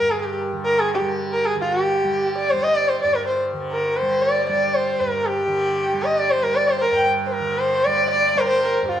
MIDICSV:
0, 0, Header, 1, 3, 480
1, 0, Start_track
1, 0, Tempo, 528634
1, 1418, Time_signature, 7, 2, 24, 8
1, 4287, Tempo, 516351
1, 8264, End_track
2, 0, Start_track
2, 0, Title_t, "Sarangi"
2, 0, Program_c, 0, 110
2, 0, Note_on_c, 0, 70, 94
2, 95, Note_on_c, 0, 68, 78
2, 108, Note_off_c, 0, 70, 0
2, 182, Note_off_c, 0, 68, 0
2, 186, Note_on_c, 0, 68, 48
2, 221, Note_on_c, 0, 67, 73
2, 235, Note_off_c, 0, 68, 0
2, 337, Note_off_c, 0, 67, 0
2, 590, Note_on_c, 0, 70, 90
2, 719, Note_on_c, 0, 68, 90
2, 733, Note_off_c, 0, 70, 0
2, 827, Note_off_c, 0, 68, 0
2, 854, Note_on_c, 0, 67, 63
2, 948, Note_off_c, 0, 67, 0
2, 1208, Note_on_c, 0, 70, 87
2, 1320, Note_on_c, 0, 68, 94
2, 1334, Note_off_c, 0, 70, 0
2, 1430, Note_off_c, 0, 68, 0
2, 1459, Note_on_c, 0, 65, 89
2, 1650, Note_off_c, 0, 65, 0
2, 1650, Note_on_c, 0, 67, 89
2, 2124, Note_off_c, 0, 67, 0
2, 2160, Note_on_c, 0, 74, 95
2, 2272, Note_on_c, 0, 72, 90
2, 2285, Note_off_c, 0, 74, 0
2, 2386, Note_on_c, 0, 75, 108
2, 2400, Note_off_c, 0, 72, 0
2, 2498, Note_on_c, 0, 74, 99
2, 2512, Note_off_c, 0, 75, 0
2, 2619, Note_on_c, 0, 72, 89
2, 2633, Note_off_c, 0, 74, 0
2, 2730, Note_off_c, 0, 72, 0
2, 2736, Note_on_c, 0, 74, 92
2, 2852, Note_on_c, 0, 70, 89
2, 2866, Note_off_c, 0, 74, 0
2, 2965, Note_off_c, 0, 70, 0
2, 2970, Note_on_c, 0, 72, 70
2, 3085, Note_off_c, 0, 72, 0
2, 3373, Note_on_c, 0, 70, 80
2, 3598, Note_on_c, 0, 72, 87
2, 3612, Note_off_c, 0, 70, 0
2, 3834, Note_on_c, 0, 74, 93
2, 3848, Note_off_c, 0, 72, 0
2, 4060, Note_off_c, 0, 74, 0
2, 4084, Note_on_c, 0, 74, 91
2, 4311, Note_on_c, 0, 72, 98
2, 4325, Note_off_c, 0, 74, 0
2, 4550, Note_on_c, 0, 70, 85
2, 4564, Note_off_c, 0, 72, 0
2, 4786, Note_on_c, 0, 67, 98
2, 4800, Note_off_c, 0, 70, 0
2, 5509, Note_on_c, 0, 75, 90
2, 5523, Note_off_c, 0, 67, 0
2, 5640, Note_on_c, 0, 74, 100
2, 5654, Note_off_c, 0, 75, 0
2, 5755, Note_on_c, 0, 72, 102
2, 5769, Note_off_c, 0, 74, 0
2, 5871, Note_on_c, 0, 70, 95
2, 5885, Note_off_c, 0, 72, 0
2, 5990, Note_on_c, 0, 74, 100
2, 6004, Note_off_c, 0, 70, 0
2, 6106, Note_on_c, 0, 72, 96
2, 6120, Note_off_c, 0, 74, 0
2, 6191, Note_off_c, 0, 72, 0
2, 6200, Note_on_c, 0, 72, 74
2, 6233, Note_on_c, 0, 70, 102
2, 6247, Note_off_c, 0, 72, 0
2, 6350, Note_on_c, 0, 79, 96
2, 6364, Note_off_c, 0, 70, 0
2, 6463, Note_off_c, 0, 79, 0
2, 6647, Note_on_c, 0, 72, 66
2, 6705, Note_on_c, 0, 70, 101
2, 6719, Note_off_c, 0, 72, 0
2, 6951, Note_on_c, 0, 72, 106
2, 6965, Note_off_c, 0, 70, 0
2, 7195, Note_on_c, 0, 74, 117
2, 7209, Note_off_c, 0, 72, 0
2, 7423, Note_off_c, 0, 74, 0
2, 7439, Note_on_c, 0, 74, 112
2, 7680, Note_on_c, 0, 72, 107
2, 7694, Note_off_c, 0, 74, 0
2, 7698, Note_on_c, 0, 70, 87
2, 7712, Note_off_c, 0, 72, 0
2, 7778, Note_on_c, 0, 72, 112
2, 7792, Note_off_c, 0, 70, 0
2, 7913, Note_on_c, 0, 70, 96
2, 7927, Note_off_c, 0, 72, 0
2, 8138, Note_off_c, 0, 70, 0
2, 8157, Note_on_c, 0, 65, 99
2, 8264, Note_off_c, 0, 65, 0
2, 8264, End_track
3, 0, Start_track
3, 0, Title_t, "Tanpura"
3, 0, Program_c, 1, 104
3, 0, Note_on_c, 1, 50, 63
3, 0, Note_on_c, 1, 55, 64
3, 12, Note_on_c, 1, 43, 62
3, 473, Note_off_c, 1, 50, 0
3, 477, Note_on_c, 1, 50, 63
3, 917, Note_off_c, 1, 55, 0
3, 917, Note_on_c, 1, 55, 59
3, 1408, Note_off_c, 1, 50, 0
3, 1408, Note_on_c, 1, 50, 59
3, 1855, Note_off_c, 1, 55, 0
3, 1855, Note_on_c, 1, 55, 66
3, 2302, Note_off_c, 1, 55, 0
3, 2302, Note_on_c, 1, 55, 71
3, 2757, Note_off_c, 1, 43, 0
3, 2761, Note_on_c, 1, 43, 61
3, 3205, Note_off_c, 1, 50, 0
3, 3205, Note_on_c, 1, 50, 65
3, 3650, Note_off_c, 1, 55, 0
3, 3650, Note_on_c, 1, 55, 64
3, 4077, Note_off_c, 1, 55, 0
3, 4077, Note_on_c, 1, 55, 66
3, 4541, Note_off_c, 1, 43, 0
3, 4545, Note_on_c, 1, 43, 67
3, 4981, Note_off_c, 1, 50, 0
3, 4985, Note_on_c, 1, 50, 66
3, 5415, Note_off_c, 1, 55, 0
3, 5415, Note_on_c, 1, 55, 67
3, 5867, Note_off_c, 1, 55, 0
3, 5867, Note_on_c, 1, 55, 66
3, 6324, Note_off_c, 1, 43, 0
3, 6328, Note_on_c, 1, 43, 71
3, 6772, Note_off_c, 1, 50, 0
3, 6775, Note_on_c, 1, 50, 68
3, 7208, Note_off_c, 1, 55, 0
3, 7208, Note_on_c, 1, 55, 69
3, 7661, Note_off_c, 1, 55, 0
3, 7661, Note_on_c, 1, 55, 72
3, 8097, Note_off_c, 1, 43, 0
3, 8101, Note_on_c, 1, 43, 73
3, 8264, Note_off_c, 1, 43, 0
3, 8264, Note_off_c, 1, 50, 0
3, 8264, Note_off_c, 1, 55, 0
3, 8264, End_track
0, 0, End_of_file